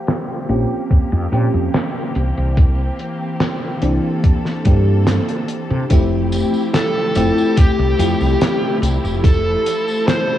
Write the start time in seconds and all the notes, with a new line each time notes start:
Already playing: F3 A#3 G4
0.07 snare, closed hi-hat
0.48 A#1 F3 A#3 C4 C#4 G4, closed hi-hat
0.91 muted fretless electric bass stroke, kick, closed hi-hat
1.12 F2
1.32 A#2 F3 A#3 C4 C#4 G4, closed hi-hat
1.54 F2
1.74 snare, closed hi-hat
2.15 C2 E3 C4, closed hi-hat
2.37 C2
2.57 kick, closed hi-hat
2.99 closed hi-hat
3.40 snare, closed hi-hat
3.82 C2 E3 A#3 C4 D4 G4 A4, closed hi-hat
4.24 kick, closed hi-hat
4.45 snare
4.65 G2 E3 A#3 C4 D4 G4, kick, closed hi-hat
5.07 snare, closed hi-hat
5.29 closed hi-hat
5.48 closed hi-hat
5.71 C3
5.90 F1 F3 A3 C4 E4 G4, kick, closed hi-hat, tambourine
6.32 closed hi-hat, tambourine
6.54 tambourine
6.74 A4, snare, closed hi-hat, tambourine
7.15 F1 F3 A3 C4 E4 G4, closed hi-hat, tambourine
7.38 tambourine
7.57 G4, muted fretless electric bass stroke, kick, closed hi-hat, tambourine
7.79 C2
7.98 F2 F3 A3 C4 E4 G4, closed hi-hat, tambourine
8.21 C2, tambourine
8.41 snare, closed hi-hat, tambourine
8.82 C2, closed hi-hat, tambourine
9.04 F1, tambourine
9.24 A4, kick, closed hi-hat, tambourine
9.66 closed hi-hat, tambourine
9.88 tambourine
10.07 C5, snare, closed hi-hat, tambourine